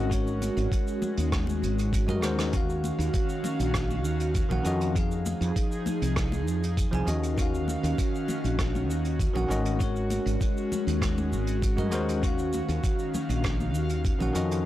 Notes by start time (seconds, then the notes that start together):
Already playing: G#1 D#3 C#4 F#4 D#5 F#5
0.07 G#3 F#4, kick
0.12 A#4 C#5, closed hi-hat, cabasa
0.27 cabasa
0.42 closed hi-hat, high conga, cabasa
0.57 G#1, closed hi-hat, cabasa
0.72 kick, closed hi-hat, cabasa
0.88 cabasa
1.02 high conga, low conga, cabasa
1.17 D#2, closed hi-hat, cabasa
1.32 kick, cross-stick, closed hi-hat, cabasa
1.47 high conga, cabasa
1.62 G#1, closed hi-hat, cabasa
1.79 closed hi-hat, cabasa
1.93 kick, closed hi-hat, cabasa
2.07 G#2 G#3 F#4 A#4 D#5, low conga, cabasa
2.21 D#2 G#3 F#4 A#4 C5, cross-stick, closed hi-hat, high conga, cabasa
2.39 cross-stick, closed hi-hat, cabasa
2.50 D#3 C#4 F#4 F5, kick, closed hi-hat, cabasa
2.54 F#4 F5
2.70 cabasa
2.84 high conga, cabasa
2.99 D#2, closed hi-hat, cabasa
3.13 kick, closed hi-hat, cabasa
3.29 cabasa
3.44 high conga, low conga, cabasa
3.59 A#1, closed hi-hat, cabasa
3.74 kick, cross-stick, closed hi-hat, cabasa
3.91 high conga, cabasa
4.05 D#2, cabasa
4.20 closed hi-hat, cabasa
4.34 kick, closed hi-hat, cabasa
4.49 A#1 D#3 C#4 F#4 F#5, low conga, cabasa
4.64 F2 D#3 C#4 F#4 D#5, closed hi-hat, cabasa
4.81 closed hi-hat, cabasa
4.93 F3 D#4 G#4, kick, closed hi-hat, cabasa
4.97 G#4 F5
5.11 cabasa
5.26 high conga, cabasa
5.41 F2, closed hi-hat, cabasa
5.56 kick, closed hi-hat, cabasa
5.72 cabasa
5.86 high conga, low conga, cabasa
6.02 C2, closed hi-hat, cabasa
6.16 kick, cross-stick, closed hi-hat, cabasa
6.32 high conga, cabasa
6.47 F2, cabasa
6.63 closed hi-hat, cabasa
6.77 kick, closed hi-hat, cabasa
6.91 C2 F3 D#4 G#4 G#5, low conga, cabasa
7.06 D#2 D#3 C#4 F#4 D#5 F5, closed hi-hat, cabasa
7.23 closed hi-hat, cabasa
7.34 D#3 C#4, kick, cabasa
7.38 F#4 F5, closed hi-hat
7.55 cabasa
7.68 high conga, cabasa
7.83 D#2, closed hi-hat, cabasa
7.98 kick, closed hi-hat, cabasa
8.15 cabasa
8.28 high conga, low conga, cabasa
8.44 A#1, closed hi-hat, cabasa
8.59 kick, cross-stick, closed hi-hat, cabasa
8.75 high conga, cabasa
8.89 D#2, cabasa
9.05 closed hi-hat, cabasa
9.19 kick, closed hi-hat, cabasa
9.33 A#1 D#3 C#4 F#4 F#5, low conga, cabasa
9.48 G#1 D#3 C#4 F#4 D#5, closed hi-hat, cabasa
9.65 closed hi-hat, cabasa
9.76 G#3 C#4 F#4, kick, closed hi-hat, cabasa
9.81 A#4 C#5
9.96 cabasa
10.10 closed hi-hat, high conga, cabasa
10.26 G#1, closed hi-hat, cabasa
10.41 kick, closed hi-hat, cabasa
10.57 cabasa
10.72 high conga, low conga, cabasa
10.87 D#2, closed hi-hat, cabasa
11.02 kick, cross-stick, closed hi-hat, cabasa
11.18 high conga, cabasa
11.32 G#1, cabasa
11.47 closed hi-hat, cabasa
11.62 kick, closed hi-hat, cabasa
11.76 G#2 G#3 F#4 A#4 D#5, low conga, cabasa
11.91 D#2 G#3 F#4 A#4 C5, closed hi-hat, high conga, cabasa
12.09 closed hi-hat, cabasa
12.19 D#3 C#4 F5, kick, cabasa
12.23 F#4 F5, closed hi-hat
12.39 cabasa
12.53 high conga, cabasa
12.68 D#2, closed hi-hat, cabasa
12.84 kick, closed hi-hat, cabasa
12.99 cabasa
13.14 high conga, low conga, cabasa
13.29 A#1, closed hi-hat, cabasa
13.44 kick, cross-stick, closed hi-hat, cabasa
13.60 high conga, cabasa
13.74 D#2, cabasa
13.89 closed hi-hat, cabasa
14.05 kick, closed hi-hat, cabasa
14.19 A#1 D#3 C#4 F#4 F#5, low conga, cabasa
14.33 F2 D#3 C#4 F#4 D#5, closed hi-hat, cabasa
14.51 closed hi-hat, cabasa
14.62 F3